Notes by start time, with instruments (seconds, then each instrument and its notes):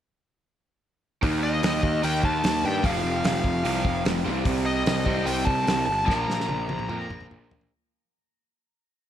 1.22 picked electric bass D#2, overdriven electric guitar D#3 A#3 D#4, kick, open hi-hat
1.43 lead electric guitar D#5
1.63 picked electric bass D#2, snare, open hi-hat
1.83 picked electric bass D#2, kick
2.03 picked electric bass D#2, overdriven electric guitar D#3 A#3 D#4, lead electric guitar G5, open hi-hat
2.23 picked electric bass D#2, lead electric guitar A5, kick
2.44 picked electric bass D#2, snare, open hi-hat
2.64 picked electric bass G2, lead electric guitar G5
2.83 picked electric bass F1, overdriven electric guitar F2 C3 F3, lead electric guitar F5, kick, open hi-hat
3.04 picked electric bass F1
3.24 picked electric bass F1, lead electric guitar F5, snare, open hi-hat
3.44 picked electric bass F1, kick
3.64 picked electric bass C2, overdriven electric guitar F2 C3 F3, open hi-hat
3.85 picked electric bass F1, kick
4.05 picked electric bass F1, snare, open hi-hat
4.24 picked electric bass C2, overdriven electric guitar C3 G3 C4
4.45 picked electric bass C2, kick, open hi-hat
4.66 lead electric guitar D#5
4.86 picked electric bass C2, snare, open hi-hat
5.06 picked electric bass C2, overdriven electric guitar C3 G3 C4, kick
5.26 picked electric bass C2, lead electric guitar G5, open hi-hat
5.45 picked electric bass C2, lead electric guitar A5, kick
5.67 picked electric bass C2, snare, open hi-hat
5.86 picked electric bass G1, lead electric guitar A5
6.06 picked electric bass A#1, overdriven electric guitar A#2 F3 A#3, lead electric guitar A5, kick, snare
6.17 lead electric guitar A#5
6.28 picked electric bass A#1, snare
6.40 snare
6.47 picked electric bass A#1, lead electric guitar A#5, high tom
6.69 picked electric bass A#1, high tom
6.79 mid tom
6.89 picked electric bass F2, overdriven electric guitar A#2 F3 A#3, mid tom
7.10 picked electric bass A#1, mid tom
7.21 mid tom
7.30 picked electric bass A#1, mid tom
7.51 floor tom
7.61 floor tom